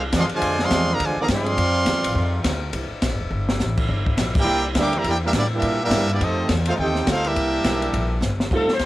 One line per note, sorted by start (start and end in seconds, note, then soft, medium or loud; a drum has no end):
0.00 0.12 C2 medium
0.00 1.40 C3 medium
0.00 1.40 G#3 medium
0.00 1.40 A#3 medium
0.00 1.40 D4 medium
0.13 0.29 E2 loud
0.13 0.23 F3 medium
0.13 kick soft
0.13 snare medium
0.13 hi-hat pedal medium
0.13 ride medium
0.17 0.24 G#3 medium
0.17 0.24 C4 medium
0.17 0.25 G#4 loud
0.17 0.24 D5 loud
0.17 0.25 F5 loud
0.17 0.24 C6 loud
0.29 muted upright bass stroke soft
0.29 ride medium
0.34 0.59 D3 medium
0.34 0.59 F3 loud
0.34 0.59 G#3 medium
0.34 0.59 F4 loud
0.34 0.59 C5 loud
0.34 0.59 D5 loud
0.34 0.59 G#5 loud
0.42 0.70 F2 medium
0.42 kick soft
0.42 ride medium
0.59 0.90 F3 loud
0.59 0.90 G#3 loud
0.59 0.90 G#4 loud
0.59 0.90 D5 loud
0.59 0.89 F5 loud
0.59 0.90 C6 loud
0.59 snare medium
0.64 0.90 C4 loud
0.70 0.99 E2 loud
0.70 kick soft
0.70 snare medium
0.70 hi-hat pedal medium
0.70 ride medium
0.92 1.02 D3 medium
0.92 1.02 F3 medium
0.92 1.02 A#3 medium
0.92 1.02 G#4 medium
0.92 1.02 D5 medium
0.92 1.02 F5 medium
0.92 1.02 A#5 loud
0.99 1.16 D2 medium
0.99 kick soft
0.99 ride medium
1.04 1.18 D3 medium
1.04 1.19 F3 medium
1.04 1.19 G#3 medium
1.04 1.19 F4 medium
1.04 1.19 C5 medium
1.04 1.19 D5 medium
1.04 1.19 G#5 loud
1.16 1.24 D3 medium
1.16 muted upright bass stroke soft
1.20 1.25 F3 medium
1.20 1.25 A#3 medium
1.20 1.26 G#4 loud
1.20 1.25 D5 medium
1.20 1.26 F5 medium
1.20 1.26 A#5 loud
1.28 1.56 G2 loud
1.28 2.41 F3 medium
1.28 1.56 G#3 medium
1.28 2.41 C4 loud
1.28 kick soft
1.28 snare medium
1.28 hi-hat pedal medium
1.28 ride medium
1.34 1.58 G#4 medium
1.34 2.43 D5 loud
1.34 2.43 F5 loud
1.34 2.43 C6 loud
1.46 ride medium
1.57 1.85 F2 medium
1.57 2.72 D#3 medium
1.57 2.72 G3 medium
1.57 2.72 A3 medium
1.57 2.72 F4 medium
1.57 kick soft
1.57 ride medium
1.85 1.96 D#2 medium
1.85 kick soft
1.85 snare medium
1.85 hi-hat pedal medium
1.85 ride medium
1.96 2.05 C2 medium
2.04 2.14 A1 medium
2.04 ride loud
2.15 2.43 F2 loud
2.15 kick soft
2.44 2.72 D2 loud
2.44 kick soft
2.44 snare medium
2.44 hi-hat pedal medium
2.44 ride loud
2.72 2.89 C2 loud
2.72 6.16 D3 medium
2.72 6.16 A#3 medium
2.72 6.16 C4 medium
2.72 6.16 E4 loud
2.72 kick soft
2.72 ride medium
2.91 muted upright bass stroke soft
3.02 3.11 A#1 medium
3.02 kick soft
3.02 snare medium
3.02 hi-hat pedal medium
3.02 ride medium
3.11 3.20 G1 medium
3.21 3.30 E1 medium
3.31 3.59 G1 loud
3.49 snare medium
3.60 3.88 A1 loud
3.60 snare medium
3.60 hi-hat pedal medium
3.77 kick medium
3.77 crash medium
3.89 4.17 G1 loud
3.89 kick soft
4.06 kick medium
4.17 4.44 A#1 loud
4.17 kick soft
4.17 snare medium
4.17 hi-hat pedal medium
4.17 ride medium
4.35 4.64 A#3 medium
4.35 4.63 E4 medium
4.35 4.64 G4 medium
4.35 kick loud
4.35 crash loud
4.40 4.65 E4 medium
4.40 4.65 A#4 medium
4.40 4.65 D5 medium
4.40 4.64 G5 loud
4.45 4.74 C2 loud
4.75 5.03 D2 loud
4.75 4.92 G3 loud
4.75 4.92 A#3 medium
4.75 4.92 D4 medium
4.75 kick soft
4.75 snare medium
4.75 hi-hat pedal medium
4.75 ride medium
4.81 4.95 A#4 loud
4.81 4.95 E5 loud
4.81 4.95 G5 loud
4.81 4.95 D6 loud
4.93 5.05 E3 medium
4.93 5.05 G3 medium
4.93 5.05 A#3 medium
4.93 ride medium
4.97 5.07 G4 medium
4.97 5.07 D5 medium
4.97 5.07 E5 medium
4.97 5.07 A#5 loud
5.04 5.32 E2 medium
5.04 5.14 A#3 medium
5.04 5.15 E4 medium
5.04 5.14 G4 medium
5.04 5.15 A#4 medium
5.04 5.15 D5 medium
5.04 kick soft
5.04 ride medium
5.08 5.15 E4 medium
5.08 5.16 G5 loud
5.24 5.29 G3 medium
5.24 5.29 A#3 medium
5.24 5.30 D4 loud
5.24 5.29 E4 medium
5.24 5.31 G4 medium
5.24 5.31 A#4 loud
5.24 5.31 E5 loud
5.33 5.61 A2 medium
5.33 5.43 G3 medium
5.33 5.43 A#3 medium
5.33 5.43 D4 medium
5.33 kick soft
5.33 snare medium
5.33 hi-hat pedal medium
5.33 ride medium
5.37 5.45 A#3 medium
5.37 5.44 E4 medium
5.37 5.45 G4 medium
5.37 5.44 D5 loud
5.53 5.79 G3 medium
5.53 5.79 A#3 medium
5.53 5.80 D4 medium
5.53 5.79 E4 medium
5.53 5.80 G4 medium
5.53 5.80 A#4 medium
5.53 5.81 E5 loud
5.62 5.90 A#2 loud
5.62 kick soft
5.62 ride medium
5.82 6.08 G3 loud
5.82 6.08 A#3 loud
5.82 6.09 D4 medium
5.82 6.08 E4 medium
5.82 6.09 G4 medium
5.82 6.08 A#4 loud
5.82 6.09 E5 loud
5.91 6.19 G2 loud
5.91 kick soft
5.91 snare medium
5.91 hi-hat pedal medium
5.91 ride medium
6.09 6.21 G3 medium
6.09 6.20 A#3 medium
6.09 6.21 A#3 medium
6.09 6.20 D4 medium
6.09 6.21 E4 medium
6.09 6.21 G4 medium
6.09 6.21 D5 loud
6.09 ride medium
6.20 6.48 F2 loud
6.20 7.35 D#3 medium
6.20 7.35 G3 medium
6.20 7.35 A3 medium
6.20 6.51 A3 medium
6.20 6.50 C4 medium
6.20 6.50 D#4 medium
6.20 7.35 F4 medium
6.20 6.50 G4 medium
6.20 6.51 A4 medium
6.20 6.50 D#5 loud
6.20 kick soft
6.20 ride medium
6.49 6.77 E2 medium
6.49 kick soft
6.49 snare medium
6.49 hi-hat pedal medium
6.49 ride medium
6.66 6.73 A3 medium
6.66 6.73 C4 medium
6.66 6.73 D#4 medium
6.66 6.73 F4 medium
6.66 6.73 A4 medium
6.66 6.73 C5 medium
6.66 6.73 F5 medium
6.66 ride medium
6.78 7.06 D#2 loud
6.78 7.05 C4 medium
6.78 7.06 D#4 medium
6.78 7.06 G4 medium
6.78 7.06 A4 medium
6.78 7.06 C5 medium
6.78 7.06 G5 loud
6.78 kick soft
6.95 snare soft
7.07 7.35 D2 loud
7.07 7.25 A3 medium
7.07 7.25 C4 medium
7.07 7.26 D#4 medium
7.07 7.25 F4 medium
7.07 7.26 A4 medium
7.07 7.26 C5 medium
7.07 7.26 F5 loud
7.07 kick soft
7.07 snare medium
7.07 hi-hat pedal medium
7.07 ride medium
7.24 8.23 G3 medium
7.24 8.23 A#3 medium
7.24 8.24 D4 medium
7.24 8.24 E4 medium
7.24 8.24 G4 medium
7.24 8.24 A#4 medium
7.24 8.23 E5 loud
7.24 ride medium
7.35 7.64 C2 medium
7.35 8.50 D3 medium
7.35 8.50 A#3 medium
7.35 8.50 C4 medium
7.35 8.50 E4 medium
7.35 kick soft
7.35 ride medium
7.64 7.92 B1 loud
7.64 kick soft
7.64 snare medium
7.64 hi-hat pedal medium
7.64 ride medium
7.82 ride medium
7.93 8.20 A#1 loud
7.93 kick soft
7.93 ride medium
8.21 8.50 G1 loud
8.21 snare medium
8.21 hi-hat pedal medium
8.40 snare medium
8.51 8.67 C2 medium
8.51 8.68 G3 medium
8.51 8.68 A3 medium
8.51 8.68 C4 medium
8.51 8.68 D#4 medium
8.51 8.68 F4 medium
8.51 kick medium
8.51 crash medium
8.55 8.70 A4 medium
8.67 muted upright bass stroke soft
8.67 snare medium
8.74 8.82 C5 medium
8.79 8.86 D#2 medium
8.79 kick soft
8.79 snare medium
8.79 hi-hat pedal medium
8.79 ride medium